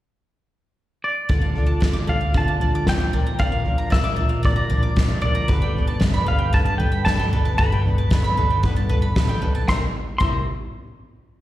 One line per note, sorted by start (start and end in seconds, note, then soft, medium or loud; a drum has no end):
1.04 2.04 D5 medium
1.29 1.79 D2 medium
1.29 1.56 D3 medium
1.29 1.56 F3 medium
1.29 1.56 D4 medium
1.29 1.56 F4 medium
1.29 1.54 A4 medium
1.29 1.79 D5 medium
1.29 kick medium
1.29 floor tom medium
1.42 1.66 F5 medium
1.56 1.80 D4 soft
1.56 1.80 F4 soft
1.56 1.81 A4 medium
1.56 floor tom medium
1.67 2.20 A5 medium
1.80 2.31 D2 medium
1.80 2.08 F3 soft
1.80 2.08 D4 medium
1.80 2.07 F4 medium
1.80 2.06 A4 medium
1.80 2.06 D5 medium
1.80 kick medium
1.80 snare medium
1.80 floor tom medium
1.93 2.47 D6 medium
2.07 2.33 D4 soft
2.07 2.33 F4 soft
2.07 2.34 A4 soft
2.07 2.33 D5 medium
2.07 2.36 F5 medium
2.07 floor tom medium
2.21 2.48 F5 medium
2.33 3.10 A2 medium
2.33 2.60 D3 medium
2.33 2.84 D3 medium
2.33 2.60 F3 medium
2.33 2.60 D4 medium
2.33 2.60 F4 medium
2.33 2.59 A4 medium
2.33 2.60 D5 medium
2.33 kick medium
2.33 floor tom medium
2.38 2.89 A5 medium
2.48 3.00 A5 medium
2.60 2.87 D4 soft
2.60 2.87 F4 soft
2.60 2.86 A4 soft
2.60 2.86 D5 medium
2.60 floor tom medium
2.75 3.14 D6 medium
2.87 3.12 D2 medium
2.87 3.13 F3 soft
2.87 3.14 D4 medium
2.87 3.14 F4 soft
2.87 3.14 A4 medium
2.87 3.12 D5 medium
2.87 3.42 G5 medium
2.87 kick medium
2.87 snare loud
2.87 floor tom medium
3.00 3.13 F5 medium
3.13 3.88 A#1 medium
3.13 4.17 A#2 medium
3.13 3.38 F3 soft
3.13 3.38 A#3 soft
3.13 3.39 D4 soft
3.13 3.38 A#4 soft
3.13 3.38 D5 medium
3.13 floor tom medium
3.27 3.77 A#5 medium
3.39 3.65 A#2 medium
3.39 3.65 D3 medium
3.39 3.65 F3 medium
3.39 3.64 A#3 medium
3.39 3.64 D4 medium
3.39 3.92 F4 medium
3.39 3.63 A#4 medium
3.39 3.89 D5 medium
3.39 3.88 F5 medium
3.39 kick medium
3.39 floor tom medium
3.52 4.05 F5 medium
3.64 3.90 F3 soft
3.64 3.91 A#3 soft
3.64 3.91 D4 soft
3.64 3.91 A#4 soft
3.64 floor tom medium
3.78 4.04 A#5 medium
3.90 4.41 A#1 medium
3.90 4.18 F3 soft
3.90 4.18 A#3 medium
3.90 4.17 D4 medium
3.90 5.21 F4 medium
3.90 4.16 A#4 medium
3.90 4.15 D5 medium
3.90 4.41 E5 medium
3.90 kick loud
3.90 snare medium
3.90 floor tom medium
4.04 4.55 D6 medium
4.17 5.20 A#2 medium
4.17 4.44 F3 soft
4.17 4.44 A#3 soft
4.17 4.44 D4 soft
4.17 4.44 A#4 soft
4.17 4.42 D5 medium
4.17 floor tom medium
4.29 4.83 F5 medium
4.43 4.70 A#2 medium
4.43 4.94 A#2 medium
4.43 4.71 D3 medium
4.43 4.71 F3 medium
4.43 4.71 A#3 medium
4.43 4.70 D4 medium
4.43 4.70 A#4 medium
4.43 4.69 D5 medium
4.43 5.21 D5 medium
4.43 kick medium
4.43 floor tom medium
4.56 4.82 A#5 medium
4.70 4.95 F3 soft
4.70 4.95 A#3 soft
4.70 4.96 D4 soft
4.70 4.97 A#4 medium
4.70 4.95 D5 medium
4.70 floor tom medium
4.83 5.34 D6 medium
4.96 5.34 A#1 medium
4.96 5.22 F3 soft
4.96 5.23 A#3 medium
4.96 5.23 D4 medium
4.96 5.23 A#4 medium
4.96 5.20 D5 medium
4.96 kick medium
4.96 snare medium
4.96 floor tom medium
5.09 5.49 F5 medium
5.22 5.47 A#2 medium
5.22 5.50 A#3 soft
5.22 5.50 D4 soft
5.22 5.50 A#4 medium
5.22 5.48 D5 medium
5.22 6.28 D5 medium
5.22 floor tom medium
5.26 5.50 F3 soft
5.35 5.48 D2 medium
5.35 5.49 A#5 medium
5.48 5.99 G1 medium
5.48 5.76 G2 medium
5.48 5.76 D3 medium
5.48 5.76 A3 medium
5.48 5.76 B3 medium
5.48 5.77 D4 medium
5.48 5.76 A4 medium
5.48 5.98 B4 medium
5.48 kick loud
5.48 floor tom medium
5.62 6.15 G5 medium
5.75 6.02 B3 soft
5.75 6.02 D4 soft
5.75 6.02 A4 soft
5.75 floor tom medium
5.79 6.01 A3 soft
5.88 6.13 A5 medium
6.00 6.51 G1 medium
6.00 7.07 G3 medium
6.00 6.28 A3 medium
6.00 6.29 B3 medium
6.00 6.28 D4 medium
6.00 6.25 B4 medium
6.00 kick medium
6.00 snare medium
6.00 floor tom medium
6.05 6.27 A4 medium
6.14 6.65 B5 medium
6.27 6.53 A3 soft
6.27 6.53 B3 soft
6.27 6.54 D4 soft
6.27 6.54 A4 soft
6.27 6.51 B4 medium
6.27 6.52 F5 medium
6.27 floor tom medium
6.39 6.92 G5 medium
6.53 7.04 G2 medium
6.53 6.80 G2 medium
6.53 6.80 D3 medium
6.53 6.81 A3 medium
6.53 6.80 B3 medium
6.53 6.79 D4 medium
6.53 6.79 A4 medium
6.53 6.78 B4 medium
6.53 6.78 A5 medium
6.53 kick medium
6.53 floor tom medium
6.66 6.91 A5 medium
6.78 7.06 A3 soft
6.78 7.07 B3 soft
6.78 7.07 D4 soft
6.78 7.06 A4 medium
6.78 7.04 B4 medium
6.78 7.04 G5 medium
6.78 floor tom medium
6.92 7.45 B5 medium
7.05 7.44 G1 medium
7.05 7.62 G3 medium
7.05 7.33 A3 soft
7.05 7.33 B3 medium
7.05 7.34 D4 medium
7.05 7.32 B4 medium
7.05 7.58 A5 medium
7.05 kick loud
7.05 snare loud
7.05 floor tom medium
7.09 7.33 A4 medium
7.19 7.71 G5 medium
7.33 7.60 A3 soft
7.33 7.60 B3 soft
7.33 7.60 D4 soft
7.33 7.60 A4 medium
7.33 7.57 B4 medium
7.33 floor tom medium
7.45 7.58 G1 medium
7.45 7.97 A5 medium
7.58 8.08 G1 medium
7.58 7.86 G2 medium
7.58 7.86 D3 medium
7.58 7.86 A3 medium
7.58 7.86 B3 medium
7.58 7.86 D4 medium
7.58 7.84 A4 medium
7.58 8.09 B4 medium
7.58 9.12 B5 medium
7.58 kick loud
7.58 floor tom medium
7.72 8.25 G5 medium
7.85 8.12 A3 soft
7.85 8.12 B3 soft
7.85 8.12 D4 soft
7.85 8.12 A4 medium
7.85 floor tom medium
7.98 8.24 A5 medium
8.11 8.61 G1 medium
8.11 9.15 G3 medium
8.11 8.38 A3 medium
8.11 8.39 B3 medium
8.11 8.38 D4 medium
8.11 8.36 B4 medium
8.11 kick loud
8.11 snare loud
8.11 floor tom medium
8.15 8.37 A4 medium
8.24 8.76 B5 medium
8.37 8.64 A3 soft
8.37 8.64 B3 soft
8.37 8.64 D4 medium
8.37 8.64 A4 medium
8.37 8.62 B4 medium
8.37 floor tom medium
8.50 9.03 G5 medium
8.63 9.13 G2 medium
8.63 8.90 G2 medium
8.63 8.90 D3 medium
8.63 8.91 A3 medium
8.63 8.90 B3 medium
8.63 8.90 D4 medium
8.63 8.89 A4 medium
8.63 8.88 B4 medium
8.63 kick medium
8.63 floor tom medium
8.76 9.02 A5 medium
8.89 9.14 A3 soft
8.89 9.15 B3 medium
8.89 9.16 D4 soft
8.89 9.16 A4 medium
8.89 9.15 B4 medium
8.89 floor tom medium
9.02 9.54 B5 medium
9.15 9.40 A1 medium
9.15 9.65 G3 medium
9.15 9.42 A3 medium
9.15 9.42 B3 medium
9.15 9.41 D4 medium
9.15 9.41 A4 medium
9.15 9.41 B4 medium
9.15 kick loud
9.15 snare loud
9.15 floor tom medium
9.29 9.68 G5 medium
9.42 9.66 B1 medium
9.42 9.68 A3 soft
9.42 9.69 B3 medium
9.42 9.68 D4 medium
9.42 9.68 A4 medium
9.42 9.68 B4 medium
9.42 floor tom medium
9.55 9.68 A5 medium
9.68 9.83 C2 medium
9.68 9.84 C3 medium
9.68 9.84 G3 medium
9.68 9.85 A#3 medium
9.68 9.85 E4 medium
9.68 9.85 A#4 medium
9.68 9.83 C5 medium
9.68 9.83 E5 medium
9.68 9.83 A#5 medium
9.68 9.83 C6 medium
9.68 kick loud
9.68 snare medium
10.18 10.45 C2 medium
10.18 10.41 C3 medium
10.18 10.41 G3 medium
10.18 10.42 A#3 medium
10.18 10.42 E4 medium
10.18 10.42 A#4 medium
10.18 10.45 C5 medium
10.18 10.45 E5 medium
10.18 10.45 A#5 medium
10.18 10.44 C6 medium
10.18 kick medium
10.18 crash medium